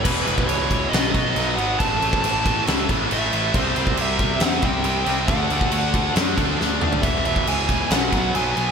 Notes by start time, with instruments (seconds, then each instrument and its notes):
0.03 picked electric bass E1, distorted electric guitar E2 B2 E3, lead electric guitar B4, kick, crash
0.26 picked electric bass E1, distorted electric guitar E2 B2 E3, crash
0.38 kick
0.47 picked electric bass C#2, distorted electric guitar E2 B2 E3, lead electric guitar C#5, crash
0.69 distorted electric guitar E2 B2 E3, kick, crash
0.89 picked electric bass B1, distorted electric guitar B2, lead electric guitar D#5
0.93 distorted electric guitar F#3 B3, snare, crash
1.10 picked electric bass B1, distorted electric guitar B2 F#3, lead electric guitar D#5
1.14 distorted electric guitar B3, kick, crash
1.36 picked electric bass B1, distorted electric guitar B2 F#3 B3, crash
1.56 picked electric bass G#1, distorted electric guitar B2 F#3 B3, lead electric guitar F#5, crash
1.79 picked electric bass A1, distorted electric guitar A2 E3 A3, lead electric guitar A5, kick, crash
2.01 picked electric bass A1, distorted electric guitar A2 E3 A3, crash
2.13 kick
2.23 picked electric bass A1, distorted electric guitar A2 E3 A3, crash
2.46 distorted electric guitar A2 E3 A3, kick, crash
2.67 picked electric bass C#2, distorted electric guitar A2 E3 A3, snare, crash
2.89 picked electric bass A1, distorted electric guitar A2 E3 A3, kick, crash
3.11 picked electric bass A1, distorted electric guitar A2 E3 A3, lead electric guitar E5, crash
3.33 picked electric bass A1, distorted electric guitar A2 E3 A3, crash
3.54 picked electric bass C2, distorted electric guitar C3 G3 C4, lead electric guitar C5, kick, crash
3.76 picked electric bass C2, distorted electric guitar C3 G3 C4, crash
3.87 kick
3.97 picked electric bass C2, distorted electric guitar C3 G3 C4, lead electric guitar E5, crash
4.19 distorted electric guitar C3 G3 C4, kick, crash
4.40 picked electric bass E2, distorted electric guitar C3 G3 C4, snare, crash
4.44 lead electric guitar F#5
4.62 picked electric bass C2, distorted electric guitar C3 G3 C4, lead electric guitar G5, kick, crash
4.84 picked electric bass C2, distorted electric guitar C3 G3 C4, crash
5.06 picked electric bass C2, distorted electric guitar C3 G3 C4, lead electric guitar G5, snare, crash
5.28 picked electric bass D2, distorted electric guitar D3 A3 D4, lead electric guitar F#5, kick, crash
5.50 picked electric bass D2, distorted electric guitar D3 A3 D4, crash
5.61 kick
5.72 picked electric bass D2, distorted electric guitar D3 A3 D4, crash
5.94 distorted electric guitar D3 A3 D4, kick, crash
6.15 picked electric bass F#2, distorted electric guitar D3 A3 D4, snare, crash
6.37 picked electric bass D2, distorted electric guitar D3 A3 D4, kick, crash
6.58 picked electric bass D2, distorted electric guitar D3 A3 D4, snare
6.81 picked electric bass D2, distorted electric guitar D3 A3 D4, mid tom
6.93 floor tom
7.02 picked electric bass E1, distorted electric guitar E2 B2 E3, lead electric guitar E5, kick, crash
7.25 picked electric bass E1, distorted electric guitar E2 B2 E3, lead electric guitar E5, crash
7.36 kick
7.47 picked electric bass C#2, distorted electric guitar E2 B2 E3, lead electric guitar G#5, crash
7.69 distorted electric guitar E2 B2 E3, kick, crash
7.91 picked electric bass B1, distorted electric guitar B2 F#3 B3, lead electric guitar F#5, snare, crash
8.13 picked electric bass B1, distorted electric guitar B2 F#3 B3, kick, crash
8.35 picked electric bass B1, distorted electric guitar B2 F#3 B3, lead electric guitar G#5, crash
8.57 picked electric bass B1, distorted electric guitar B2 F#3 B3, crash